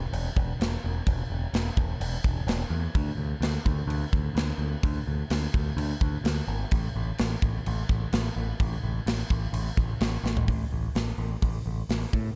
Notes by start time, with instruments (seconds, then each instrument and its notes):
0.13 picked electric bass E1, crash
0.36 picked electric bass E1, kick
0.60 picked electric bass E1, snare, crash
0.84 picked electric bass E1
1.07 picked electric bass E1, kick, crash
1.30 picked electric bass E1
1.53 picked electric bass E1, snare, crash
1.77 picked electric bass E1, kick
2.00 picked electric bass E1, crash
2.24 picked electric bass E1, kick
2.47 picked electric bass E1, snare, crash
2.70 picked electric bass E2
2.95 picked electric bass D2, kick, crash
3.17 picked electric bass D2
3.41 picked electric bass D2, snare, crash
3.65 picked electric bass D2, kick
3.87 picked electric bass D2, crash
4.13 picked electric bass D2, kick
4.35 picked electric bass D2, snare, crash
4.58 picked electric bass D2
4.83 picked electric bass D2, kick, crash
5.07 picked electric bass D2
5.30 picked electric bass D2, snare, crash
5.54 picked electric bass D2, kick
5.77 picked electric bass D2, crash
6.01 picked electric bass D2, kick
6.24 picked electric bass D2, snare, crash
6.48 picked electric bass G#1
6.71 picked electric bass A1, kick, crash
6.96 picked electric bass A1
7.18 picked electric bass A1, snare, crash
7.42 picked electric bass A1, kick
7.66 picked electric bass A1, crash
7.89 picked electric bass A1, kick
8.13 picked electric bass A1, snare, crash
8.36 picked electric bass A1
8.60 picked electric bass A1, kick, crash
8.84 picked electric bass A1
9.06 picked electric bass A1, snare, crash
9.30 picked electric bass A1, kick
9.53 picked electric bass A1, crash
9.77 picked electric bass A1, kick
10.01 picked electric bass A1, snare, crash
10.24 picked electric bass A1, snare
10.37 floor tom
10.48 picked electric bass A1, kick, open hi-hat
10.72 picked electric bass A1
10.95 picked electric bass A1, snare, open hi-hat
11.18 picked electric bass A1
11.42 picked electric bass A1, kick, open hi-hat
11.66 picked electric bass A1
11.89 picked electric bass A1, snare, open hi-hat
12.13 picked electric bass A2, kick